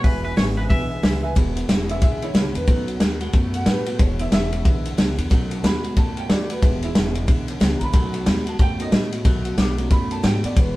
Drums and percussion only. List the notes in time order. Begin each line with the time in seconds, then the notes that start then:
0.04 kick, open hi-hat
0.37 snare, open hi-hat
0.70 kick, open hi-hat
1.03 snare, open hi-hat
1.36 kick, ride
1.57 ride
1.69 snare, ride
1.89 ride
2.02 kick, ride
2.22 ride
2.35 snare, ride
2.55 ride
2.67 kick, ride
2.88 ride
3.00 snare, ride
3.21 ride
3.33 kick, ride
3.54 ride
3.66 snare, ride
3.86 ride
3.99 kick, ride
4.19 ride
4.32 snare, ride
4.53 ride
4.65 kick, ride
4.85 ride
4.98 snare, ride
5.18 ride
5.31 kick, ride
5.51 ride
5.64 snare, ride
5.84 ride
5.97 kick, ride
6.17 ride
6.30 snare, ride
6.50 ride
6.62 kick, ride
6.83 ride
6.95 snare, ride
7.15 ride
7.28 kick, ride
7.48 ride
7.61 snare, ride
7.81 ride
7.93 kick, ride
8.14 ride
8.26 snare, ride
8.47 ride
8.59 kick, ride
8.80 ride
8.92 snare, ride
9.13 ride
9.25 kick, ride
9.45 ride
9.58 snare, ride
9.78 ride
9.91 kick, ride
10.11 ride
10.24 snare, ride
10.44 ride
10.56 kick, ride